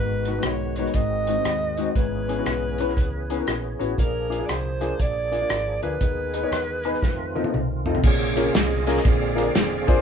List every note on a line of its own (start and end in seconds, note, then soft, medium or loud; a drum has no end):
0.00 0.37 G#1 medium
0.00 0.73 G#2 soft
0.00 1.94 D#3 medium
0.00 0.94 G#3 medium
0.00 0.94 B3 medium
0.00 1.94 F#4 medium
0.00 0.47 B4 medium
0.25 0.32 G#3 medium
0.25 0.32 B3 medium
0.25 0.32 D#4 medium
0.25 0.32 F#4 medium
0.25 closed hi-hat medium
0.38 0.49 G#3 medium
0.38 0.49 B3 medium
0.38 0.49 D#4 medium
0.38 0.49 F#4 medium
0.42 0.87 B1 medium
0.42 0.77 C#5 medium
0.42 cross-stick loud
0.42 closed hi-hat medium
0.76 0.88 G#3 medium
0.76 0.89 B3 medium
0.76 0.88 D#4 medium
0.76 0.89 F#4 medium
0.76 0.97 C#5 medium
0.76 cross-stick soft
0.76 closed hi-hat medium
0.86 cross-stick soft
0.94 1.38 G#1 medium
0.94 1.75 G#2 soft
0.94 1.95 G#3 medium
0.94 1.95 C4 medium
0.94 1.96 D#5 loud
0.94 kick medium
0.94 closed hi-hat medium
1.27 1.33 G#3 medium
1.27 1.33 C4 medium
1.27 1.33 D#4 medium
1.27 1.33 F#4 medium
1.27 closed hi-hat medium
1.38 1.49 G#3 medium
1.38 1.49 C4 soft
1.38 1.49 D#4 soft
1.38 1.49 F#4 medium
1.45 1.88 D#2 medium
1.45 cross-stick medium
1.45 closed hi-hat medium
1.77 1.89 G#3 medium
1.77 1.89 C4 medium
1.77 1.88 D#4 medium
1.77 1.89 F#4 medium
1.77 closed hi-hat medium
1.95 2.38 G#1 medium
1.95 2.75 G#2 soft
1.95 3.96 E3 medium
1.95 3.96 B3 medium
1.95 3.95 C#4 medium
1.95 6.98 G#4 medium
1.95 3.76 B4 medium
1.95 kick medium
1.95 closed hi-hat medium
2.28 2.33 B3 medium
2.28 2.34 C#4 medium
2.28 2.34 E4 medium
2.28 2.34 G#4 medium
2.28 closed hi-hat medium
2.38 2.50 B3 medium
2.38 2.50 C#4 medium
2.38 2.50 E4 medium
2.38 2.50 F#4 medium
2.46 2.97 B1 medium
2.46 cross-stick medium
2.46 closed hi-hat medium
2.78 2.90 B3 medium
2.78 2.90 C#4 medium
2.78 2.90 E4 medium
2.78 2.90 B4 medium
2.78 closed hi-hat medium
2.89 cross-stick soft
2.97 3.40 C#2 medium
2.97 kick medium
2.97 closed hi-hat medium
3.30 3.35 B3 medium
3.30 3.35 C#4 medium
3.30 3.35 E4 medium
3.30 3.35 G#4 medium
3.30 closed hi-hat medium
3.38 3.50 B3 medium
3.38 3.50 C#4 medium
3.38 3.50 E4 medium
3.38 3.50 A#4 medium
3.47 3.75 A#1 medium
3.47 cross-stick medium
3.47 closed hi-hat medium
3.79 3.95 A1 medium
3.79 3.90 B3 medium
3.79 3.90 C#4 medium
3.79 3.90 E4 medium
3.79 3.90 F#4 medium
3.79 closed hi-hat medium
3.97 4.41 A#1 medium
3.97 4.77 A#2 soft
3.97 5.98 F3 medium
3.97 5.98 A#3 medium
3.97 5.98 D4 medium
3.97 4.47 A#4 medium
3.97 kick medium
3.97 closed hi-hat medium
4.30 4.35 A#3 medium
4.30 4.35 D4 medium
4.30 4.35 F4 medium
4.30 4.36 G#4 medium
4.30 closed hi-hat medium
4.39 4.51 A#3 medium
4.39 4.51 D4 medium
4.39 4.51 F4 medium
4.39 4.51 G#4 medium
4.46 4.92 C2 medium
4.46 4.52 D5 medium
4.46 cross-stick medium
4.46 closed hi-hat medium
4.51 5.03 C5 medium
4.81 4.92 A#3 medium
4.81 4.92 D4 medium
4.81 4.92 F4 medium
4.81 4.92 G#4 medium
4.81 cross-stick soft
4.81 closed hi-hat medium
5.00 5.42 A#1 medium
5.00 5.83 D5 loud
5.00 kick medium
5.00 closed hi-hat medium
5.32 5.37 A#3 medium
5.32 5.37 D4 medium
5.32 5.37 F4 medium
5.32 5.37 G#4 medium
5.32 closed hi-hat medium
5.41 5.53 A#3 medium
5.41 5.53 D4 soft
5.41 5.53 F4 soft
5.50 5.78 G#1 medium
5.50 cross-stick loud
5.50 closed hi-hat medium
5.82 5.98 D2 medium
5.82 5.93 A#3 medium
5.82 5.93 D4 medium
5.82 5.93 F4 medium
5.82 5.93 G#4 medium
5.82 7.82 B4 medium
5.82 closed hi-hat medium
6.00 6.44 D#2 medium
6.00 6.80 D#3 medium
6.00 8.01 D#3 medium
6.00 7.01 G#3 medium
6.00 7.01 B3 medium
6.00 kick medium
6.00 closed hi-hat medium
6.34 6.39 B3 medium
6.34 6.39 D#4 medium
6.34 6.39 G#4 medium
6.34 6.39 B4 medium
6.34 closed hi-hat medium
6.43 6.55 B3 medium
6.43 6.55 D#4 medium
6.43 6.55 G#4 medium
6.43 6.55 C#5 medium
6.51 6.94 E2 medium
6.51 cross-stick medium
6.51 closed hi-hat medium
6.83 6.95 B3 medium
6.83 6.95 D#4 medium
6.83 6.95 G#4 medium
6.83 6.95 B4 medium
6.83 closed hi-hat medium
6.94 cross-stick soft
7.03 7.46 F2 medium
7.03 8.03 A3 medium
7.03 8.03 C4 medium
7.03 8.03 F4 medium
7.03 kick medium
7.03 snare soft
7.35 7.40 C4 medium
7.35 7.40 D#4 medium
7.35 7.40 F4 medium
7.35 7.41 A4 medium
7.35 high tom medium
7.44 7.57 C4 medium
7.44 7.57 D#4 medium
7.44 7.57 F4 medium
7.44 7.57 A4 medium
7.44 high tom medium
7.54 7.97 C2 medium
7.54 mid tom medium
7.86 7.96 C4 medium
7.86 7.96 D#4 medium
7.86 7.96 F4 medium
7.86 7.97 A4 medium
7.86 floor tom medium
7.95 floor tom medium
8.03 8.47 A#1 loud
8.03 8.83 A#2 medium
8.03 8.84 C3 medium
8.03 8.83 C#3 medium
8.03 8.83 G#3 medium
8.03 9.02 F4 medium
8.03 8.54 G#4 medium
8.03 8.52 C#5 medium
8.03 kick loud
8.03 crash loud
8.36 8.47 A#3 medium
8.36 8.47 C#4 medium
8.36 8.47 F4 medium
8.36 8.47 G#4 medium
8.36 8.47 A#4 medium
8.36 ride medium
8.50 8.54 F5 medium
8.54 8.98 C2 loud
8.54 9.02 G#4 medium
8.54 9.07 D#5 loud
8.54 snare loud
8.54 ride medium
8.87 8.97 A#3 medium
8.87 8.98 C#4 medium
8.87 8.98 F4 medium
8.87 8.98 G#4 medium
8.87 8.98 A#4 medium
8.87 snare soft
8.87 ride medium
8.97 snare soft
9.04 9.48 A#1 medium
9.04 9.83 A#2 medium
9.04 10.01 D3 medium
9.04 10.01 G#3 medium
9.04 10.01 C4 medium
9.04 10.01 G#4 medium
9.04 10.01 D5 medium
9.04 10.01 F5 loud
9.04 kick loud
9.04 ride medium
9.35 9.47 A#3 medium
9.35 9.47 D4 medium
9.35 9.47 F4 medium
9.35 9.47 G#4 medium
9.35 9.47 A#4 medium
9.35 ride medium
9.55 9.84 E1 medium
9.55 snare loud
9.55 ride medium
9.87 10.01 F1 medium
9.87 9.99 A#3 medium
9.87 9.98 D4 medium
9.87 9.99 F4 medium
9.87 9.98 G#4 medium
9.87 9.99 C5 loud
9.87 kick loud
9.87 ride medium